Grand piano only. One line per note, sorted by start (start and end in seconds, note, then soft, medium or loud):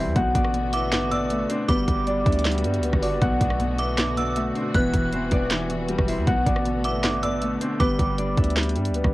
0.00 0.18 E3 medium
0.00 0.16 G3 medium
0.00 0.16 B3 medium
0.00 0.16 E4 medium
0.16 0.33 B2 loud
0.35 0.52 B2 medium
0.54 0.91 B2 medium
0.73 1.69 B3 medium
0.92 1.10 B2 medium
1.11 1.69 B2 medium
1.30 1.69 A3 medium
1.49 1.69 D4 loud
1.69 1.86 G3 medium
1.88 2.05 G3 medium
2.07 2.44 G3 medium
2.26 3.22 D4 medium
2.45 2.63 G3 medium
2.64 3.22 G3 medium
2.83 3.21 B3 medium
3.02 3.22 F#4 medium
3.21 3.39 B2 loud
3.41 3.58 B2 medium
3.60 3.96 B2 medium
3.79 4.74 B3 medium
3.98 4.15 B2 medium
4.17 4.74 B2 medium
4.36 4.75 A3 medium
4.55 4.74 D4 medium
4.75 4.92 E3 medium
4.93 5.11 E3 medium
5.13 5.49 E3 medium
5.32 6.27 B3 medium
5.51 5.68 E3 medium
5.70 6.27 E3 medium
5.89 6.27 G3 medium
6.08 6.27 E4 medium
6.27 6.45 B2 medium
6.46 6.64 B2 medium
6.65 7.02 B2 medium
6.85 7.80 B3 medium
7.04 7.21 B2 medium
7.23 7.80 B2 medium
7.42 7.80 A3 medium
7.61 7.80 D4 loud
7.80 7.98 G3 medium
7.99 8.17 G3 medium
8.18 8.55 G3 medium
8.37 9.14 D4 medium
8.57 8.74 G3 medium
8.76 9.14 G3 medium
8.95 9.14 B3 medium